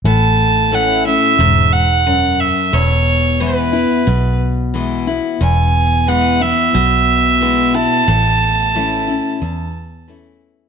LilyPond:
<<
  \new Staff \with { instrumentName = "Fiddle" } { \time 4/4 \key a \major \tempo 4 = 90 a''4 fis''8 e''4 fis''4 e''8 | cis''4 b'4. r4. | gis''4 fis''8 e''2 a''8~ | a''2. r4 | }
  \new Staff \with { instrumentName = "Steel-string acoustic guitar" } { \time 4/4 \key a \major << { r4 <e a cis' e'>8 <cis' e'>8 r2 | r4 <e gis b e'>8 <b e'>8 r4 <e gis b e'>8 <b e'>8 | r4 <e gis b e'>8 <b e'>8 r4 <e gis b e'>8 <b e'>8 | r4 <e a cis' e'>8 <cis' e'>8 r4 <e a cis' e'>4 | } \\ { a,2 gis,4 fis,4 | e,2 b,2 | e,2 b,2 | a,2 e,2 | } >> }
  \new Staff \with { instrumentName = "Fingered electric bass" } { \clef bass \time 4/4 \key a \major a,,2 e,,2 | e,,2 b,,2 | e,,2 b,,2 | a,,2 e,2 | }
>>